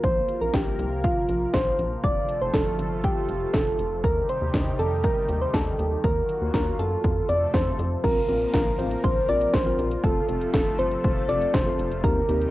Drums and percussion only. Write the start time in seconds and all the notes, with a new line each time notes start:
0.04 kick, closed hi-hat
0.29 closed hi-hat
0.54 kick, snare, closed hi-hat
0.79 closed hi-hat
1.04 kick, closed hi-hat
1.29 closed hi-hat
1.54 kick, snare, closed hi-hat
1.79 closed hi-hat
2.04 kick, closed hi-hat
2.29 closed hi-hat
2.54 kick, snare, closed hi-hat
2.79 closed hi-hat
3.04 kick, closed hi-hat
3.29 closed hi-hat
3.54 kick, snare, closed hi-hat
3.79 closed hi-hat
4.04 kick, closed hi-hat
4.29 closed hi-hat
4.54 kick, snare, closed hi-hat
4.79 closed hi-hat
5.04 kick, closed hi-hat
5.29 closed hi-hat
5.54 kick, snare, closed hi-hat
5.79 closed hi-hat
6.04 kick, closed hi-hat
6.29 closed hi-hat
6.54 kick, snare, closed hi-hat
6.79 closed hi-hat
7.04 kick, closed hi-hat
7.29 closed hi-hat
7.54 kick, snare, closed hi-hat
7.79 closed hi-hat
8.04 kick, closed hi-hat, crash
8.29 closed hi-hat
8.41 closed hi-hat
8.54 kick, snare, closed hi-hat
8.79 closed hi-hat
8.91 closed hi-hat
9.04 kick, closed hi-hat
9.29 closed hi-hat
9.41 closed hi-hat
9.54 kick, snare, closed hi-hat
9.79 closed hi-hat
9.91 closed hi-hat
10.04 kick, closed hi-hat
10.29 closed hi-hat
10.41 closed hi-hat
10.54 kick, snare, closed hi-hat
10.79 closed hi-hat
10.91 closed hi-hat
11.04 kick, closed hi-hat
11.29 closed hi-hat
11.41 closed hi-hat
11.54 kick, snare, closed hi-hat
11.79 closed hi-hat
11.92 closed hi-hat
12.04 kick, closed hi-hat
12.29 closed hi-hat
12.41 closed hi-hat